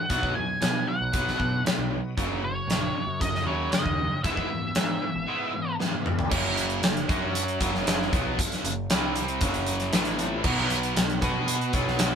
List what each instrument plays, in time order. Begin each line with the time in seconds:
0.09 picked electric bass B1, overdriven electric guitar B2 F#3 B3, tonewheel organ B3 F#4 D#5, lead electric guitar F#5, kick, closed hi-hat
0.23 kick
0.35 overdriven electric guitar B2 F#3, lead electric guitar G#5
0.62 picked electric bass B2, overdriven electric guitar B2 F#3, snare, closed hi-hat
0.87 overdriven electric guitar B2 F#3, lead electric guitar F#5
1.01 picked electric bass B1
1.13 overdriven electric guitar B2 F#3 B3, kick, closed hi-hat
1.28 snare
1.39 overdriven electric guitar B2 F#3, picked electric bass B2, kick
1.66 overdriven electric guitar B2 F#3, snare, closed hi-hat
1.78 picked electric bass B1
1.93 overdriven electric guitar B2 F#3
2.17 picked electric bass F#1, overdriven electric guitar F#2 C#3 F#3, tonewheel organ A#3 F#4 C#5, kick, closed hi-hat
2.44 overdriven electric guitar F#2 C#3, lead electric guitar C#5
2.67 picked electric bass A#1, overdriven electric guitar C#3, snare, closed hi-hat
2.71 overdriven electric guitar F#2
2.96 overdriven electric guitar F#2 C#3
3.07 picked electric bass F#2
3.21 overdriven electric guitar F#2 C#3, lead electric guitar D#5, kick, closed hi-hat
3.35 snare
3.46 picked electric bass D#2, overdriven electric guitar F#2 C#3 F#3, lead electric guitar C#5
3.72 overdriven electric guitar F#2 C#3, lead electric guitar D#5, snare, closed hi-hat
3.86 picked electric bass D#2, kick
3.99 overdriven electric guitar F#2 C#3
4.24 picked electric bass G#1, overdriven electric guitar G#2 E3 G#3 B3 E4, tonewheel organ B3 G#4 E5, lead electric guitar E5, kick, closed hi-hat
4.37 kick
4.49 overdriven electric guitar G#2 E3 G#3 B3
4.75 picked electric bass G#2, overdriven electric guitar G#2 E3 G#3 B3, snare, closed hi-hat
5.02 overdriven electric guitar G#2 E3 G#3 B3
5.15 picked electric bass G#1
5.27 overdriven electric guitar G#2 E3 G#3 B3 E4
5.53 overdriven electric guitar G#2 E3 G#3 B3
5.79 overdriven electric guitar G#2 E3 G#3 B3, snare
5.93 high tom
6.04 overdriven electric guitar G#2 E3 G#3 B3, mid tom
6.19 floor tom
6.31 picked electric bass F#1, overdriven electric guitar F#2 C#3 F#3, kick, crash
6.57 closed hi-hat
6.70 closed hi-hat
6.82 picked electric bass F#1, overdriven electric guitar F#2 C#3, snare, closed hi-hat
6.97 closed hi-hat
7.08 picked electric bass F#2, overdriven electric guitar F#3 C#4 F#4, kick, closed hi-hat
7.35 closed hi-hat
7.48 closed hi-hat
7.60 picked electric bass F#1, overdriven electric guitar F#2 C#3 F#3, kick, closed hi-hat
7.75 snare
7.87 snare, closed hi-hat
8.02 snare
8.12 picked electric bass B1, overdriven electric guitar B2 F#3 B3, kick, closed hi-hat
8.39 muted overdriven electric guitar stroke, kick, closed hi-hat
8.52 snare, closed hi-hat
8.64 picked electric bass F#1, overdriven electric guitar F#2 C#3, closed hi-hat
8.90 picked electric bass C2, overdriven electric guitar C3 G3 C4, snare, closed hi-hat
9.16 closed hi-hat
9.28 closed hi-hat
9.41 picked electric bass F#1, overdriven electric guitar F#2 C#3 F#3, kick, closed hi-hat
9.54 closed hi-hat
9.66 closed hi-hat
9.80 snare, closed hi-hat
9.93 picked electric bass A1, overdriven electric guitar A2 E3 A3, snare, closed hi-hat
10.05 snare, closed hi-hat
10.14 tonewheel organ B3 C4
10.19 tonewheel organ D4 E4, closed hi-hat
10.24 tonewheel organ F4 G4
10.30 tonewheel organ A4 B4
10.36 tonewheel organ C5 D5
10.41 picked electric bass B1, overdriven electric guitar B2, tonewheel organ E5 F5, kick, crash
10.46 overdriven electric guitar F#3 B3, tonewheel organ B3 F#4 F#5
10.58 snare
10.70 closed hi-hat
10.83 closed hi-hat
10.96 picked electric bass B1, overdriven electric guitar B2 F#3, snare, closed hi-hat
11.10 closed hi-hat
11.22 picked electric bass B2, overdriven electric guitar B3 F#4 B4, kick, closed hi-hat
11.48 closed hi-hat
11.61 closed hi-hat
11.73 picked electric bass B1, overdriven electric guitar B2 F#3 B3, kick, closed hi-hat
11.88 snare
11.99 snare, closed hi-hat